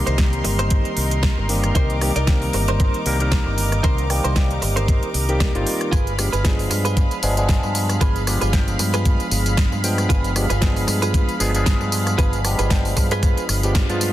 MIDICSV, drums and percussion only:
0, 0, Header, 1, 2, 480
1, 0, Start_track
1, 0, Key_signature, -3, "minor"
1, 0, Tempo, 521739
1, 1611, Time_signature, 4, 2, 24, 8
1, 12998, End_track
2, 0, Start_track
2, 0, Title_t, "Drums"
2, 63, Note_on_c, 9, 42, 48
2, 155, Note_off_c, 9, 42, 0
2, 166, Note_on_c, 9, 38, 114
2, 168, Note_on_c, 9, 42, 75
2, 172, Note_on_c, 9, 36, 110
2, 258, Note_off_c, 9, 38, 0
2, 260, Note_off_c, 9, 42, 0
2, 264, Note_off_c, 9, 36, 0
2, 303, Note_on_c, 9, 42, 32
2, 395, Note_off_c, 9, 42, 0
2, 409, Note_on_c, 9, 46, 106
2, 501, Note_off_c, 9, 46, 0
2, 543, Note_on_c, 9, 42, 50
2, 635, Note_off_c, 9, 42, 0
2, 648, Note_on_c, 9, 42, 76
2, 653, Note_on_c, 9, 36, 120
2, 740, Note_off_c, 9, 42, 0
2, 745, Note_off_c, 9, 36, 0
2, 783, Note_on_c, 9, 42, 35
2, 875, Note_off_c, 9, 42, 0
2, 889, Note_on_c, 9, 46, 104
2, 981, Note_off_c, 9, 46, 0
2, 1025, Note_on_c, 9, 42, 50
2, 1117, Note_off_c, 9, 42, 0
2, 1130, Note_on_c, 9, 38, 125
2, 1132, Note_on_c, 9, 42, 77
2, 1134, Note_on_c, 9, 36, 117
2, 1222, Note_off_c, 9, 38, 0
2, 1224, Note_off_c, 9, 42, 0
2, 1226, Note_off_c, 9, 36, 0
2, 1372, Note_on_c, 9, 46, 103
2, 1464, Note_off_c, 9, 46, 0
2, 1505, Note_on_c, 9, 37, 52
2, 1505, Note_on_c, 9, 42, 49
2, 1597, Note_off_c, 9, 37, 0
2, 1597, Note_off_c, 9, 42, 0
2, 1612, Note_on_c, 9, 42, 70
2, 1615, Note_on_c, 9, 36, 117
2, 1704, Note_off_c, 9, 42, 0
2, 1707, Note_off_c, 9, 36, 0
2, 1746, Note_on_c, 9, 42, 33
2, 1838, Note_off_c, 9, 42, 0
2, 1853, Note_on_c, 9, 37, 61
2, 1853, Note_on_c, 9, 46, 104
2, 1945, Note_off_c, 9, 37, 0
2, 1945, Note_off_c, 9, 46, 0
2, 1986, Note_on_c, 9, 42, 48
2, 2078, Note_off_c, 9, 42, 0
2, 2091, Note_on_c, 9, 38, 112
2, 2092, Note_on_c, 9, 42, 74
2, 2094, Note_on_c, 9, 36, 115
2, 2183, Note_off_c, 9, 38, 0
2, 2184, Note_off_c, 9, 42, 0
2, 2186, Note_off_c, 9, 36, 0
2, 2224, Note_on_c, 9, 46, 56
2, 2316, Note_off_c, 9, 46, 0
2, 2331, Note_on_c, 9, 46, 101
2, 2423, Note_off_c, 9, 46, 0
2, 2465, Note_on_c, 9, 42, 48
2, 2557, Note_off_c, 9, 42, 0
2, 2574, Note_on_c, 9, 42, 69
2, 2575, Note_on_c, 9, 36, 121
2, 2666, Note_off_c, 9, 42, 0
2, 2667, Note_off_c, 9, 36, 0
2, 2706, Note_on_c, 9, 42, 33
2, 2798, Note_off_c, 9, 42, 0
2, 2813, Note_on_c, 9, 46, 102
2, 2905, Note_off_c, 9, 46, 0
2, 2946, Note_on_c, 9, 42, 49
2, 3038, Note_off_c, 9, 42, 0
2, 3051, Note_on_c, 9, 38, 122
2, 3053, Note_on_c, 9, 42, 73
2, 3055, Note_on_c, 9, 36, 116
2, 3143, Note_off_c, 9, 38, 0
2, 3145, Note_off_c, 9, 42, 0
2, 3147, Note_off_c, 9, 36, 0
2, 3291, Note_on_c, 9, 46, 105
2, 3383, Note_off_c, 9, 46, 0
2, 3424, Note_on_c, 9, 37, 54
2, 3424, Note_on_c, 9, 42, 48
2, 3516, Note_off_c, 9, 37, 0
2, 3516, Note_off_c, 9, 42, 0
2, 3531, Note_on_c, 9, 42, 69
2, 3534, Note_on_c, 9, 36, 111
2, 3623, Note_off_c, 9, 42, 0
2, 3626, Note_off_c, 9, 36, 0
2, 3664, Note_on_c, 9, 42, 32
2, 3756, Note_off_c, 9, 42, 0
2, 3772, Note_on_c, 9, 37, 64
2, 3772, Note_on_c, 9, 46, 104
2, 3864, Note_off_c, 9, 37, 0
2, 3864, Note_off_c, 9, 46, 0
2, 3905, Note_on_c, 9, 42, 47
2, 3997, Note_off_c, 9, 42, 0
2, 4010, Note_on_c, 9, 38, 107
2, 4012, Note_on_c, 9, 42, 73
2, 4014, Note_on_c, 9, 36, 111
2, 4102, Note_off_c, 9, 38, 0
2, 4104, Note_off_c, 9, 42, 0
2, 4106, Note_off_c, 9, 36, 0
2, 4145, Note_on_c, 9, 42, 32
2, 4237, Note_off_c, 9, 42, 0
2, 4252, Note_on_c, 9, 46, 98
2, 4344, Note_off_c, 9, 46, 0
2, 4386, Note_on_c, 9, 42, 45
2, 4478, Note_off_c, 9, 42, 0
2, 4493, Note_on_c, 9, 36, 119
2, 4493, Note_on_c, 9, 42, 72
2, 4585, Note_off_c, 9, 36, 0
2, 4585, Note_off_c, 9, 42, 0
2, 4624, Note_on_c, 9, 42, 31
2, 4716, Note_off_c, 9, 42, 0
2, 4732, Note_on_c, 9, 46, 108
2, 4824, Note_off_c, 9, 46, 0
2, 4865, Note_on_c, 9, 42, 47
2, 4957, Note_off_c, 9, 42, 0
2, 4970, Note_on_c, 9, 38, 112
2, 4972, Note_on_c, 9, 36, 115
2, 4972, Note_on_c, 9, 42, 76
2, 5062, Note_off_c, 9, 38, 0
2, 5064, Note_off_c, 9, 36, 0
2, 5064, Note_off_c, 9, 42, 0
2, 5107, Note_on_c, 9, 42, 33
2, 5199, Note_off_c, 9, 42, 0
2, 5212, Note_on_c, 9, 46, 108
2, 5304, Note_off_c, 9, 46, 0
2, 5344, Note_on_c, 9, 37, 56
2, 5344, Note_on_c, 9, 42, 44
2, 5436, Note_off_c, 9, 37, 0
2, 5436, Note_off_c, 9, 42, 0
2, 5451, Note_on_c, 9, 36, 112
2, 5452, Note_on_c, 9, 42, 68
2, 5452, Note_on_c, 9, 54, 42
2, 5543, Note_off_c, 9, 36, 0
2, 5544, Note_off_c, 9, 42, 0
2, 5544, Note_off_c, 9, 54, 0
2, 5585, Note_on_c, 9, 42, 34
2, 5585, Note_on_c, 9, 54, 20
2, 5677, Note_off_c, 9, 42, 0
2, 5677, Note_off_c, 9, 54, 0
2, 5691, Note_on_c, 9, 37, 69
2, 5691, Note_on_c, 9, 46, 101
2, 5691, Note_on_c, 9, 54, 72
2, 5783, Note_off_c, 9, 37, 0
2, 5783, Note_off_c, 9, 46, 0
2, 5783, Note_off_c, 9, 54, 0
2, 5825, Note_on_c, 9, 42, 47
2, 5825, Note_on_c, 9, 54, 33
2, 5917, Note_off_c, 9, 42, 0
2, 5917, Note_off_c, 9, 54, 0
2, 5930, Note_on_c, 9, 38, 103
2, 5932, Note_on_c, 9, 36, 108
2, 5932, Note_on_c, 9, 42, 70
2, 5932, Note_on_c, 9, 54, 43
2, 6022, Note_off_c, 9, 38, 0
2, 6024, Note_off_c, 9, 36, 0
2, 6024, Note_off_c, 9, 42, 0
2, 6024, Note_off_c, 9, 54, 0
2, 6065, Note_on_c, 9, 46, 58
2, 6065, Note_on_c, 9, 54, 21
2, 6157, Note_off_c, 9, 46, 0
2, 6157, Note_off_c, 9, 54, 0
2, 6171, Note_on_c, 9, 46, 100
2, 6171, Note_on_c, 9, 54, 75
2, 6263, Note_off_c, 9, 46, 0
2, 6263, Note_off_c, 9, 54, 0
2, 6303, Note_on_c, 9, 42, 47
2, 6303, Note_on_c, 9, 54, 32
2, 6395, Note_off_c, 9, 42, 0
2, 6395, Note_off_c, 9, 54, 0
2, 6410, Note_on_c, 9, 42, 75
2, 6410, Note_on_c, 9, 54, 42
2, 6411, Note_on_c, 9, 36, 113
2, 6502, Note_off_c, 9, 42, 0
2, 6502, Note_off_c, 9, 54, 0
2, 6503, Note_off_c, 9, 36, 0
2, 6542, Note_on_c, 9, 42, 31
2, 6542, Note_on_c, 9, 54, 21
2, 6634, Note_off_c, 9, 42, 0
2, 6634, Note_off_c, 9, 54, 0
2, 6649, Note_on_c, 9, 46, 99
2, 6649, Note_on_c, 9, 54, 77
2, 6741, Note_off_c, 9, 46, 0
2, 6741, Note_off_c, 9, 54, 0
2, 6781, Note_on_c, 9, 42, 48
2, 6781, Note_on_c, 9, 54, 32
2, 6873, Note_off_c, 9, 42, 0
2, 6873, Note_off_c, 9, 54, 0
2, 6887, Note_on_c, 9, 38, 112
2, 6889, Note_on_c, 9, 42, 76
2, 6889, Note_on_c, 9, 54, 44
2, 6892, Note_on_c, 9, 36, 110
2, 6979, Note_off_c, 9, 38, 0
2, 6981, Note_off_c, 9, 42, 0
2, 6981, Note_off_c, 9, 54, 0
2, 6984, Note_off_c, 9, 36, 0
2, 7022, Note_on_c, 9, 54, 21
2, 7114, Note_off_c, 9, 54, 0
2, 7129, Note_on_c, 9, 46, 103
2, 7129, Note_on_c, 9, 54, 80
2, 7221, Note_off_c, 9, 46, 0
2, 7221, Note_off_c, 9, 54, 0
2, 7263, Note_on_c, 9, 37, 60
2, 7263, Note_on_c, 9, 42, 47
2, 7263, Note_on_c, 9, 54, 31
2, 7355, Note_off_c, 9, 37, 0
2, 7355, Note_off_c, 9, 42, 0
2, 7355, Note_off_c, 9, 54, 0
2, 7370, Note_on_c, 9, 42, 72
2, 7370, Note_on_c, 9, 54, 44
2, 7371, Note_on_c, 9, 36, 111
2, 7462, Note_off_c, 9, 42, 0
2, 7462, Note_off_c, 9, 54, 0
2, 7463, Note_off_c, 9, 36, 0
2, 7504, Note_on_c, 9, 42, 33
2, 7504, Note_on_c, 9, 54, 22
2, 7596, Note_off_c, 9, 42, 0
2, 7596, Note_off_c, 9, 54, 0
2, 7610, Note_on_c, 9, 37, 64
2, 7610, Note_on_c, 9, 46, 101
2, 7610, Note_on_c, 9, 54, 78
2, 7702, Note_off_c, 9, 37, 0
2, 7702, Note_off_c, 9, 46, 0
2, 7702, Note_off_c, 9, 54, 0
2, 7741, Note_on_c, 9, 42, 47
2, 7741, Note_on_c, 9, 54, 32
2, 7833, Note_off_c, 9, 42, 0
2, 7833, Note_off_c, 9, 54, 0
2, 7848, Note_on_c, 9, 38, 109
2, 7850, Note_on_c, 9, 42, 75
2, 7850, Note_on_c, 9, 54, 42
2, 7851, Note_on_c, 9, 36, 106
2, 7940, Note_off_c, 9, 38, 0
2, 7942, Note_off_c, 9, 42, 0
2, 7942, Note_off_c, 9, 54, 0
2, 7943, Note_off_c, 9, 36, 0
2, 7983, Note_on_c, 9, 42, 33
2, 7983, Note_on_c, 9, 54, 21
2, 8075, Note_off_c, 9, 42, 0
2, 8075, Note_off_c, 9, 54, 0
2, 8089, Note_on_c, 9, 46, 94
2, 8089, Note_on_c, 9, 54, 77
2, 8181, Note_off_c, 9, 46, 0
2, 8181, Note_off_c, 9, 54, 0
2, 8223, Note_on_c, 9, 42, 48
2, 8223, Note_on_c, 9, 54, 32
2, 8315, Note_off_c, 9, 42, 0
2, 8315, Note_off_c, 9, 54, 0
2, 8329, Note_on_c, 9, 42, 76
2, 8330, Note_on_c, 9, 54, 43
2, 8331, Note_on_c, 9, 36, 112
2, 8421, Note_off_c, 9, 42, 0
2, 8422, Note_off_c, 9, 54, 0
2, 8423, Note_off_c, 9, 36, 0
2, 8463, Note_on_c, 9, 42, 33
2, 8463, Note_on_c, 9, 54, 21
2, 8555, Note_off_c, 9, 42, 0
2, 8555, Note_off_c, 9, 54, 0
2, 8569, Note_on_c, 9, 46, 102
2, 8569, Note_on_c, 9, 54, 79
2, 8661, Note_off_c, 9, 46, 0
2, 8661, Note_off_c, 9, 54, 0
2, 8702, Note_on_c, 9, 42, 50
2, 8703, Note_on_c, 9, 54, 34
2, 8794, Note_off_c, 9, 42, 0
2, 8795, Note_off_c, 9, 54, 0
2, 8808, Note_on_c, 9, 38, 113
2, 8810, Note_on_c, 9, 42, 78
2, 8810, Note_on_c, 9, 54, 45
2, 8811, Note_on_c, 9, 36, 106
2, 8900, Note_off_c, 9, 38, 0
2, 8902, Note_off_c, 9, 42, 0
2, 8902, Note_off_c, 9, 54, 0
2, 8903, Note_off_c, 9, 36, 0
2, 8944, Note_on_c, 9, 54, 22
2, 9036, Note_off_c, 9, 54, 0
2, 9051, Note_on_c, 9, 46, 101
2, 9051, Note_on_c, 9, 54, 79
2, 9143, Note_off_c, 9, 46, 0
2, 9143, Note_off_c, 9, 54, 0
2, 9183, Note_on_c, 9, 37, 61
2, 9183, Note_on_c, 9, 42, 49
2, 9183, Note_on_c, 9, 54, 32
2, 9275, Note_off_c, 9, 37, 0
2, 9275, Note_off_c, 9, 42, 0
2, 9275, Note_off_c, 9, 54, 0
2, 9291, Note_on_c, 9, 36, 110
2, 9291, Note_on_c, 9, 42, 80
2, 9291, Note_on_c, 9, 54, 44
2, 9383, Note_off_c, 9, 36, 0
2, 9383, Note_off_c, 9, 42, 0
2, 9383, Note_off_c, 9, 54, 0
2, 9424, Note_on_c, 9, 42, 36
2, 9424, Note_on_c, 9, 54, 21
2, 9516, Note_off_c, 9, 42, 0
2, 9516, Note_off_c, 9, 54, 0
2, 9530, Note_on_c, 9, 37, 67
2, 9530, Note_on_c, 9, 46, 99
2, 9530, Note_on_c, 9, 54, 78
2, 9622, Note_off_c, 9, 37, 0
2, 9622, Note_off_c, 9, 46, 0
2, 9622, Note_off_c, 9, 54, 0
2, 9662, Note_on_c, 9, 42, 52
2, 9662, Note_on_c, 9, 54, 33
2, 9754, Note_off_c, 9, 42, 0
2, 9754, Note_off_c, 9, 54, 0
2, 9767, Note_on_c, 9, 38, 106
2, 9769, Note_on_c, 9, 42, 80
2, 9769, Note_on_c, 9, 54, 45
2, 9770, Note_on_c, 9, 36, 104
2, 9859, Note_off_c, 9, 38, 0
2, 9861, Note_off_c, 9, 42, 0
2, 9861, Note_off_c, 9, 54, 0
2, 9862, Note_off_c, 9, 36, 0
2, 9902, Note_on_c, 9, 46, 54
2, 9902, Note_on_c, 9, 54, 22
2, 9994, Note_off_c, 9, 46, 0
2, 9994, Note_off_c, 9, 54, 0
2, 10008, Note_on_c, 9, 46, 97
2, 10008, Note_on_c, 9, 54, 76
2, 10100, Note_off_c, 9, 46, 0
2, 10100, Note_off_c, 9, 54, 0
2, 10141, Note_on_c, 9, 42, 50
2, 10141, Note_on_c, 9, 54, 32
2, 10233, Note_off_c, 9, 42, 0
2, 10233, Note_off_c, 9, 54, 0
2, 10250, Note_on_c, 9, 36, 113
2, 10250, Note_on_c, 9, 42, 78
2, 10250, Note_on_c, 9, 54, 45
2, 10342, Note_off_c, 9, 36, 0
2, 10342, Note_off_c, 9, 42, 0
2, 10342, Note_off_c, 9, 54, 0
2, 10383, Note_on_c, 9, 42, 36
2, 10383, Note_on_c, 9, 54, 22
2, 10475, Note_off_c, 9, 42, 0
2, 10475, Note_off_c, 9, 54, 0
2, 10490, Note_on_c, 9, 46, 94
2, 10490, Note_on_c, 9, 54, 83
2, 10582, Note_off_c, 9, 46, 0
2, 10582, Note_off_c, 9, 54, 0
2, 10622, Note_on_c, 9, 42, 54
2, 10622, Note_on_c, 9, 54, 35
2, 10714, Note_off_c, 9, 42, 0
2, 10714, Note_off_c, 9, 54, 0
2, 10729, Note_on_c, 9, 38, 112
2, 10730, Note_on_c, 9, 36, 107
2, 10731, Note_on_c, 9, 42, 81
2, 10731, Note_on_c, 9, 54, 49
2, 10821, Note_off_c, 9, 38, 0
2, 10822, Note_off_c, 9, 36, 0
2, 10823, Note_off_c, 9, 42, 0
2, 10823, Note_off_c, 9, 54, 0
2, 10862, Note_on_c, 9, 54, 23
2, 10954, Note_off_c, 9, 54, 0
2, 10968, Note_on_c, 9, 46, 101
2, 10968, Note_on_c, 9, 54, 78
2, 11060, Note_off_c, 9, 46, 0
2, 11060, Note_off_c, 9, 54, 0
2, 11102, Note_on_c, 9, 37, 58
2, 11102, Note_on_c, 9, 42, 52
2, 11102, Note_on_c, 9, 54, 33
2, 11194, Note_off_c, 9, 37, 0
2, 11194, Note_off_c, 9, 42, 0
2, 11194, Note_off_c, 9, 54, 0
2, 11210, Note_on_c, 9, 36, 111
2, 11211, Note_on_c, 9, 42, 77
2, 11211, Note_on_c, 9, 54, 45
2, 11302, Note_off_c, 9, 36, 0
2, 11303, Note_off_c, 9, 42, 0
2, 11303, Note_off_c, 9, 54, 0
2, 11343, Note_on_c, 9, 42, 37
2, 11343, Note_on_c, 9, 54, 22
2, 11435, Note_off_c, 9, 42, 0
2, 11435, Note_off_c, 9, 54, 0
2, 11450, Note_on_c, 9, 37, 62
2, 11450, Note_on_c, 9, 46, 99
2, 11450, Note_on_c, 9, 54, 78
2, 11542, Note_off_c, 9, 37, 0
2, 11542, Note_off_c, 9, 46, 0
2, 11542, Note_off_c, 9, 54, 0
2, 11581, Note_on_c, 9, 42, 51
2, 11581, Note_on_c, 9, 54, 32
2, 11673, Note_off_c, 9, 42, 0
2, 11673, Note_off_c, 9, 54, 0
2, 11688, Note_on_c, 9, 38, 112
2, 11690, Note_on_c, 9, 36, 104
2, 11690, Note_on_c, 9, 42, 82
2, 11690, Note_on_c, 9, 54, 44
2, 11780, Note_off_c, 9, 38, 0
2, 11782, Note_off_c, 9, 36, 0
2, 11782, Note_off_c, 9, 42, 0
2, 11782, Note_off_c, 9, 54, 0
2, 11823, Note_on_c, 9, 46, 54
2, 11823, Note_on_c, 9, 54, 22
2, 11915, Note_off_c, 9, 46, 0
2, 11915, Note_off_c, 9, 54, 0
2, 11929, Note_on_c, 9, 46, 95
2, 11929, Note_on_c, 9, 54, 76
2, 11930, Note_on_c, 9, 36, 58
2, 12021, Note_off_c, 9, 46, 0
2, 12021, Note_off_c, 9, 54, 0
2, 12022, Note_off_c, 9, 36, 0
2, 12062, Note_on_c, 9, 42, 52
2, 12062, Note_on_c, 9, 54, 32
2, 12154, Note_off_c, 9, 42, 0
2, 12154, Note_off_c, 9, 54, 0
2, 12169, Note_on_c, 9, 42, 81
2, 12169, Note_on_c, 9, 54, 45
2, 12170, Note_on_c, 9, 36, 112
2, 12261, Note_off_c, 9, 42, 0
2, 12261, Note_off_c, 9, 54, 0
2, 12262, Note_off_c, 9, 36, 0
2, 12304, Note_on_c, 9, 42, 36
2, 12304, Note_on_c, 9, 54, 22
2, 12396, Note_off_c, 9, 42, 0
2, 12396, Note_off_c, 9, 54, 0
2, 12411, Note_on_c, 9, 37, 59
2, 12411, Note_on_c, 9, 46, 98
2, 12411, Note_on_c, 9, 54, 81
2, 12503, Note_off_c, 9, 37, 0
2, 12503, Note_off_c, 9, 46, 0
2, 12503, Note_off_c, 9, 54, 0
2, 12543, Note_on_c, 9, 42, 53
2, 12543, Note_on_c, 9, 54, 33
2, 12635, Note_off_c, 9, 42, 0
2, 12635, Note_off_c, 9, 54, 0
2, 12648, Note_on_c, 9, 38, 117
2, 12650, Note_on_c, 9, 36, 109
2, 12650, Note_on_c, 9, 42, 86
2, 12650, Note_on_c, 9, 54, 47
2, 12740, Note_off_c, 9, 38, 0
2, 12742, Note_off_c, 9, 36, 0
2, 12742, Note_off_c, 9, 42, 0
2, 12742, Note_off_c, 9, 54, 0
2, 12783, Note_on_c, 9, 42, 38
2, 12783, Note_on_c, 9, 54, 23
2, 12875, Note_off_c, 9, 42, 0
2, 12875, Note_off_c, 9, 54, 0
2, 12889, Note_on_c, 9, 46, 99
2, 12889, Note_on_c, 9, 54, 80
2, 12981, Note_off_c, 9, 46, 0
2, 12981, Note_off_c, 9, 54, 0
2, 12998, End_track
0, 0, End_of_file